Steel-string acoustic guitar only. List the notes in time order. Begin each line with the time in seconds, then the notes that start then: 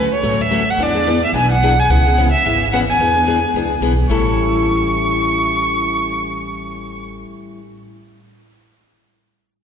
0.23 D3 F#3 A3 C#4 F#4
0.51 D3 F#3 A3 C#4 F#4
0.79 E3 B3 D4 G#4
0.95 B3 D4 G#4
1.07 E3 B3 D4 G#4
1.34 E3 B3 D4 G#4
1.63 E3 B3 D4 G#4
1.90 C#3 E3 B3 C#4 G#4
2.07 B3 C#4 G#4
2.17 C#3 E3 B3 C#4 G#4
2.46 C#3 E3 B3 C#4 G#4
2.73 C#3 E3 B3 C#4 G#4
3.00 E3 B3 D4 G#4
3.15 B3 D4 G#4
3.27 E3 B3 D4 G#4
3.55 E3 B3 D4 G#4
3.82 E3 B3 D4 G#4
4.09 A2 E3 G3 C#4 E4 A4